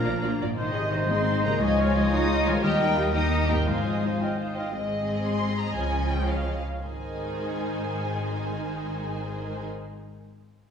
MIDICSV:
0, 0, Header, 1, 12, 480
1, 0, Start_track
1, 0, Key_signature, -4, "major"
1, 0, Tempo, 346620
1, 795, Time_signature, 6, 3, 24, 8
1, 14826, End_track
2, 0, Start_track
2, 0, Title_t, "Violin section"
2, 0, Program_c, 0, 48
2, 0, Note_on_c, 0, 82, 61
2, 529, Note_off_c, 0, 82, 0
2, 806, Note_on_c, 0, 75, 50
2, 1470, Note_off_c, 0, 75, 0
2, 1516, Note_on_c, 0, 84, 54
2, 1983, Note_off_c, 0, 84, 0
2, 1992, Note_on_c, 0, 82, 53
2, 2225, Note_off_c, 0, 82, 0
2, 2238, Note_on_c, 0, 80, 59
2, 2928, Note_off_c, 0, 80, 0
2, 2943, Note_on_c, 0, 87, 68
2, 3410, Note_off_c, 0, 87, 0
2, 3418, Note_on_c, 0, 80, 60
2, 3648, Note_off_c, 0, 80, 0
2, 3653, Note_on_c, 0, 79, 70
2, 4348, Note_off_c, 0, 79, 0
2, 4363, Note_on_c, 0, 87, 54
2, 4834, Note_off_c, 0, 87, 0
2, 4846, Note_on_c, 0, 82, 44
2, 4942, Note_off_c, 0, 82, 0
2, 5082, Note_on_c, 0, 80, 39
2, 5799, Note_off_c, 0, 80, 0
2, 6305, Note_on_c, 0, 77, 40
2, 6528, Note_off_c, 0, 77, 0
2, 6548, Note_on_c, 0, 75, 44
2, 7252, Note_off_c, 0, 75, 0
2, 7255, Note_on_c, 0, 84, 49
2, 7731, Note_on_c, 0, 82, 54
2, 7738, Note_off_c, 0, 84, 0
2, 7969, Note_on_c, 0, 80, 56
2, 7975, Note_off_c, 0, 82, 0
2, 8444, Note_off_c, 0, 80, 0
2, 8457, Note_on_c, 0, 79, 55
2, 8700, Note_off_c, 0, 79, 0
2, 8707, Note_on_c, 0, 77, 48
2, 9192, Note_off_c, 0, 77, 0
2, 9427, Note_on_c, 0, 80, 35
2, 13351, Note_off_c, 0, 80, 0
2, 14826, End_track
3, 0, Start_track
3, 0, Title_t, "Flute"
3, 0, Program_c, 1, 73
3, 0, Note_on_c, 1, 77, 44
3, 535, Note_off_c, 1, 77, 0
3, 799, Note_on_c, 1, 75, 45
3, 3296, Note_off_c, 1, 75, 0
3, 3648, Note_on_c, 1, 75, 50
3, 4310, Note_off_c, 1, 75, 0
3, 4365, Note_on_c, 1, 75, 41
3, 5084, Note_on_c, 1, 77, 33
3, 5105, Note_off_c, 1, 75, 0
3, 5766, Note_off_c, 1, 77, 0
3, 5823, Note_on_c, 1, 79, 35
3, 6065, Note_on_c, 1, 77, 27
3, 6086, Note_off_c, 1, 79, 0
3, 6301, Note_on_c, 1, 79, 31
3, 6322, Note_off_c, 1, 77, 0
3, 6543, Note_off_c, 1, 79, 0
3, 14826, End_track
4, 0, Start_track
4, 0, Title_t, "Oboe"
4, 0, Program_c, 2, 68
4, 0, Note_on_c, 2, 70, 48
4, 525, Note_off_c, 2, 70, 0
4, 789, Note_on_c, 2, 72, 44
4, 2235, Note_on_c, 2, 73, 44
4, 2256, Note_off_c, 2, 72, 0
4, 3640, Note_off_c, 2, 73, 0
4, 3648, Note_on_c, 2, 70, 52
4, 4310, Note_off_c, 2, 70, 0
4, 4357, Note_on_c, 2, 70, 42
4, 5095, Note_on_c, 2, 72, 34
4, 5116, Note_off_c, 2, 70, 0
4, 6309, Note_off_c, 2, 72, 0
4, 14826, End_track
5, 0, Start_track
5, 0, Title_t, "Viola section"
5, 0, Program_c, 3, 48
5, 65, Note_on_c, 3, 74, 36
5, 68, Note_on_c, 3, 65, 37
5, 162, Note_off_c, 3, 74, 0
5, 165, Note_off_c, 3, 65, 0
5, 315, Note_on_c, 3, 74, 34
5, 317, Note_on_c, 3, 65, 37
5, 411, Note_off_c, 3, 74, 0
5, 413, Note_off_c, 3, 65, 0
5, 560, Note_on_c, 3, 65, 36
5, 565, Note_on_c, 3, 74, 36
5, 656, Note_off_c, 3, 65, 0
5, 660, Note_off_c, 3, 74, 0
5, 797, Note_on_c, 3, 72, 39
5, 803, Note_on_c, 3, 63, 38
5, 1019, Note_off_c, 3, 72, 0
5, 1022, Note_off_c, 3, 63, 0
5, 1030, Note_on_c, 3, 68, 36
5, 1030, Note_on_c, 3, 75, 38
5, 1269, Note_on_c, 3, 63, 36
5, 1269, Note_on_c, 3, 72, 35
5, 1272, Note_off_c, 3, 68, 0
5, 1272, Note_off_c, 3, 75, 0
5, 1505, Note_on_c, 3, 75, 36
5, 1511, Note_on_c, 3, 68, 33
5, 1512, Note_off_c, 3, 63, 0
5, 1512, Note_off_c, 3, 72, 0
5, 1749, Note_off_c, 3, 75, 0
5, 1751, Note_on_c, 3, 63, 38
5, 1752, Note_off_c, 3, 68, 0
5, 1752, Note_on_c, 3, 72, 36
5, 1974, Note_off_c, 3, 63, 0
5, 1974, Note_off_c, 3, 72, 0
5, 1987, Note_on_c, 3, 68, 37
5, 1988, Note_on_c, 3, 75, 39
5, 2208, Note_off_c, 3, 75, 0
5, 2225, Note_on_c, 3, 75, 45
5, 2227, Note_off_c, 3, 68, 0
5, 2231, Note_on_c, 3, 63, 45
5, 2447, Note_off_c, 3, 75, 0
5, 2451, Note_off_c, 3, 63, 0
5, 2469, Note_on_c, 3, 65, 41
5, 2473, Note_on_c, 3, 73, 43
5, 2703, Note_on_c, 3, 63, 41
5, 2703, Note_on_c, 3, 75, 46
5, 2704, Note_off_c, 3, 65, 0
5, 2706, Note_off_c, 3, 73, 0
5, 2935, Note_on_c, 3, 73, 46
5, 2938, Note_off_c, 3, 63, 0
5, 2938, Note_off_c, 3, 75, 0
5, 2940, Note_on_c, 3, 65, 44
5, 3171, Note_off_c, 3, 73, 0
5, 3171, Note_on_c, 3, 63, 45
5, 3173, Note_off_c, 3, 65, 0
5, 3174, Note_on_c, 3, 75, 46
5, 3390, Note_off_c, 3, 63, 0
5, 3392, Note_off_c, 3, 75, 0
5, 3418, Note_on_c, 3, 65, 46
5, 3419, Note_on_c, 3, 73, 48
5, 3641, Note_on_c, 3, 75, 48
5, 3642, Note_on_c, 3, 67, 50
5, 3648, Note_off_c, 3, 65, 0
5, 3649, Note_off_c, 3, 73, 0
5, 3862, Note_off_c, 3, 75, 0
5, 3863, Note_off_c, 3, 67, 0
5, 3890, Note_on_c, 3, 79, 44
5, 3894, Note_on_c, 3, 63, 44
5, 4122, Note_on_c, 3, 67, 44
5, 4122, Note_on_c, 3, 75, 39
5, 4123, Note_off_c, 3, 79, 0
5, 4125, Note_off_c, 3, 63, 0
5, 4358, Note_on_c, 3, 79, 37
5, 4359, Note_off_c, 3, 75, 0
5, 4360, Note_off_c, 3, 67, 0
5, 4360, Note_on_c, 3, 63, 39
5, 4591, Note_on_c, 3, 75, 35
5, 4593, Note_on_c, 3, 67, 36
5, 4599, Note_off_c, 3, 79, 0
5, 4600, Note_off_c, 3, 63, 0
5, 4820, Note_off_c, 3, 75, 0
5, 4821, Note_off_c, 3, 67, 0
5, 4833, Note_on_c, 3, 63, 32
5, 4835, Note_on_c, 3, 79, 32
5, 5071, Note_off_c, 3, 63, 0
5, 5082, Note_off_c, 3, 79, 0
5, 5088, Note_on_c, 3, 63, 29
5, 5091, Note_on_c, 3, 72, 30
5, 5313, Note_off_c, 3, 63, 0
5, 5315, Note_off_c, 3, 72, 0
5, 5330, Note_on_c, 3, 65, 27
5, 5330, Note_on_c, 3, 75, 28
5, 5572, Note_off_c, 3, 65, 0
5, 5573, Note_off_c, 3, 75, 0
5, 5585, Note_on_c, 3, 63, 24
5, 5589, Note_on_c, 3, 72, 25
5, 5821, Note_on_c, 3, 75, 24
5, 5822, Note_off_c, 3, 63, 0
5, 5824, Note_off_c, 3, 72, 0
5, 5824, Note_on_c, 3, 65, 24
5, 6063, Note_off_c, 3, 75, 0
5, 6064, Note_off_c, 3, 65, 0
5, 6081, Note_on_c, 3, 72, 23
5, 6082, Note_on_c, 3, 63, 25
5, 6298, Note_off_c, 3, 63, 0
5, 6298, Note_off_c, 3, 72, 0
5, 6320, Note_on_c, 3, 75, 26
5, 6327, Note_on_c, 3, 65, 25
5, 6552, Note_off_c, 3, 75, 0
5, 6556, Note_off_c, 3, 65, 0
5, 6556, Note_on_c, 3, 56, 37
5, 6560, Note_on_c, 3, 60, 36
5, 7931, Note_off_c, 3, 56, 0
5, 7933, Note_off_c, 3, 60, 0
5, 7990, Note_on_c, 3, 53, 41
5, 7992, Note_on_c, 3, 61, 39
5, 9194, Note_off_c, 3, 53, 0
5, 9195, Note_off_c, 3, 61, 0
5, 9438, Note_on_c, 3, 51, 31
5, 9444, Note_on_c, 3, 63, 30
5, 13356, Note_off_c, 3, 51, 0
5, 13359, Note_off_c, 3, 63, 0
5, 14826, End_track
6, 0, Start_track
6, 0, Title_t, "Violin section"
6, 0, Program_c, 4, 48
6, 0, Note_on_c, 4, 62, 49
6, 438, Note_off_c, 4, 62, 0
6, 1521, Note_on_c, 4, 63, 42
6, 2182, Note_off_c, 4, 63, 0
6, 2228, Note_on_c, 4, 65, 53
6, 3614, Note_off_c, 4, 65, 0
6, 3633, Note_on_c, 4, 67, 64
6, 3870, Note_off_c, 4, 67, 0
6, 3876, Note_on_c, 4, 63, 49
6, 4098, Note_on_c, 4, 65, 50
6, 4111, Note_off_c, 4, 63, 0
6, 4335, Note_on_c, 4, 67, 55
6, 4347, Note_off_c, 4, 65, 0
6, 5059, Note_off_c, 4, 67, 0
6, 5084, Note_on_c, 4, 65, 38
6, 6182, Note_off_c, 4, 65, 0
6, 6537, Note_on_c, 4, 68, 33
6, 6543, Note_on_c, 4, 75, 33
6, 9130, Note_off_c, 4, 68, 0
6, 9133, Note_off_c, 4, 75, 0
6, 9437, Note_on_c, 4, 72, 28
6, 9440, Note_on_c, 4, 68, 27
6, 13356, Note_off_c, 4, 72, 0
6, 13357, Note_off_c, 4, 68, 0
6, 14826, End_track
7, 0, Start_track
7, 0, Title_t, "Harp"
7, 0, Program_c, 5, 46
7, 0, Note_on_c, 5, 46, 39
7, 0, Note_on_c, 5, 62, 36
7, 0, Note_on_c, 5, 65, 33
7, 0, Note_on_c, 5, 70, 31
7, 551, Note_on_c, 5, 44, 35
7, 611, Note_on_c, 5, 63, 30
7, 677, Note_on_c, 5, 68, 29
7, 693, Note_off_c, 5, 46, 0
7, 726, Note_off_c, 5, 62, 0
7, 732, Note_on_c, 5, 72, 28
7, 755, Note_off_c, 5, 65, 0
7, 786, Note_off_c, 5, 70, 0
7, 1984, Note_on_c, 5, 49, 41
7, 2029, Note_off_c, 5, 63, 0
7, 2046, Note_on_c, 5, 63, 36
7, 2105, Note_on_c, 5, 65, 37
7, 2126, Note_off_c, 5, 44, 0
7, 2171, Note_on_c, 5, 75, 36
7, 2217, Note_off_c, 5, 72, 0
7, 3391, Note_on_c, 5, 51, 45
7, 3434, Note_off_c, 5, 63, 0
7, 3451, Note_on_c, 5, 63, 36
7, 3515, Note_on_c, 5, 70, 38
7, 3539, Note_off_c, 5, 49, 0
7, 3561, Note_off_c, 5, 75, 0
7, 3578, Note_on_c, 5, 75, 38
7, 3600, Note_off_c, 5, 65, 0
7, 3603, Note_off_c, 5, 68, 0
7, 4845, Note_on_c, 5, 44, 29
7, 4892, Note_off_c, 5, 63, 0
7, 4908, Note_on_c, 5, 63, 23
7, 4971, Note_on_c, 5, 72, 25
7, 4978, Note_off_c, 5, 51, 0
7, 5039, Note_on_c, 5, 77, 24
7, 5041, Note_off_c, 5, 70, 0
7, 6443, Note_off_c, 5, 44, 0
7, 6540, Note_off_c, 5, 77, 0
7, 7942, Note_off_c, 5, 72, 0
7, 7967, Note_off_c, 5, 75, 0
7, 9362, Note_off_c, 5, 63, 0
7, 14826, End_track
8, 0, Start_track
8, 0, Title_t, "Clarinet"
8, 0, Program_c, 6, 71
8, 0, Note_on_c, 6, 62, 42
8, 528, Note_off_c, 6, 62, 0
8, 789, Note_on_c, 6, 63, 37
8, 2230, Note_on_c, 6, 65, 46
8, 2251, Note_off_c, 6, 63, 0
8, 3643, Note_off_c, 6, 65, 0
8, 3650, Note_on_c, 6, 63, 50
8, 4311, Note_off_c, 6, 63, 0
8, 4364, Note_on_c, 6, 63, 41
8, 5074, Note_off_c, 6, 63, 0
8, 5087, Note_on_c, 6, 63, 31
8, 6281, Note_off_c, 6, 63, 0
8, 14826, End_track
9, 0, Start_track
9, 0, Title_t, "Cello section"
9, 0, Program_c, 7, 48
9, 0, Note_on_c, 7, 58, 59
9, 527, Note_off_c, 7, 58, 0
9, 795, Note_on_c, 7, 51, 55
9, 1465, Note_off_c, 7, 51, 0
9, 1514, Note_on_c, 7, 60, 58
9, 1991, Note_off_c, 7, 60, 0
9, 1996, Note_on_c, 7, 58, 63
9, 2227, Note_off_c, 7, 58, 0
9, 2232, Note_on_c, 7, 56, 70
9, 2939, Note_off_c, 7, 56, 0
9, 2944, Note_on_c, 7, 63, 78
9, 3401, Note_off_c, 7, 63, 0
9, 3416, Note_on_c, 7, 56, 71
9, 3647, Note_off_c, 7, 56, 0
9, 3650, Note_on_c, 7, 55, 75
9, 4361, Note_off_c, 7, 55, 0
9, 4368, Note_on_c, 7, 63, 73
9, 4837, Note_off_c, 7, 63, 0
9, 4849, Note_on_c, 7, 58, 57
9, 5089, Note_off_c, 7, 58, 0
9, 5089, Note_on_c, 7, 56, 43
9, 5817, Note_off_c, 7, 56, 0
9, 6550, Note_on_c, 7, 44, 41
9, 7927, Note_off_c, 7, 44, 0
9, 7989, Note_on_c, 7, 49, 45
9, 9193, Note_off_c, 7, 49, 0
9, 9441, Note_on_c, 7, 44, 31
9, 13358, Note_off_c, 7, 44, 0
9, 14826, End_track
10, 0, Start_track
10, 0, Title_t, "French horn section"
10, 0, Program_c, 8, 60
10, 0, Note_on_c, 8, 53, 58
10, 531, Note_off_c, 8, 53, 0
10, 784, Note_on_c, 8, 48, 53
10, 1459, Note_off_c, 8, 48, 0
10, 1530, Note_on_c, 8, 56, 50
10, 1990, Note_off_c, 8, 56, 0
10, 1996, Note_on_c, 8, 55, 53
10, 2102, Note_off_c, 8, 55, 0
10, 2228, Note_on_c, 8, 53, 63
10, 2923, Note_off_c, 8, 53, 0
10, 2947, Note_on_c, 8, 56, 71
10, 3402, Note_off_c, 8, 56, 0
10, 3422, Note_on_c, 8, 53, 60
10, 3646, Note_off_c, 8, 53, 0
10, 3651, Note_on_c, 8, 51, 66
10, 4347, Note_off_c, 8, 51, 0
10, 4350, Note_on_c, 8, 58, 59
10, 4837, Note_off_c, 8, 58, 0
10, 4846, Note_on_c, 8, 55, 45
10, 4954, Note_off_c, 8, 55, 0
10, 5082, Note_on_c, 8, 53, 40
10, 5799, Note_off_c, 8, 53, 0
10, 14826, End_track
11, 0, Start_track
11, 0, Title_t, "Timpani"
11, 0, Program_c, 10, 47
11, 3649, Note_on_c, 10, 51, 50
11, 4311, Note_off_c, 10, 51, 0
11, 5084, Note_on_c, 10, 44, 43
11, 5764, Note_off_c, 10, 44, 0
11, 14826, End_track
12, 0, Start_track
12, 0, Title_t, "Double bass section"
12, 0, Program_c, 11, 48
12, 84, Note_on_c, 11, 34, 41
12, 178, Note_off_c, 11, 34, 0
12, 312, Note_on_c, 11, 34, 41
12, 409, Note_off_c, 11, 34, 0
12, 557, Note_on_c, 11, 34, 40
12, 653, Note_off_c, 11, 34, 0
12, 800, Note_on_c, 11, 32, 47
12, 2176, Note_off_c, 11, 32, 0
12, 2237, Note_on_c, 11, 37, 49
12, 3619, Note_off_c, 11, 37, 0
12, 3653, Note_on_c, 11, 39, 58
12, 5061, Note_off_c, 11, 39, 0
12, 5088, Note_on_c, 11, 32, 41
12, 6306, Note_off_c, 11, 32, 0
12, 6552, Note_on_c, 11, 32, 38
12, 7928, Note_off_c, 11, 32, 0
12, 7990, Note_on_c, 11, 37, 44
12, 9194, Note_off_c, 11, 37, 0
12, 9438, Note_on_c, 11, 32, 32
12, 13356, Note_off_c, 11, 32, 0
12, 14826, End_track
0, 0, End_of_file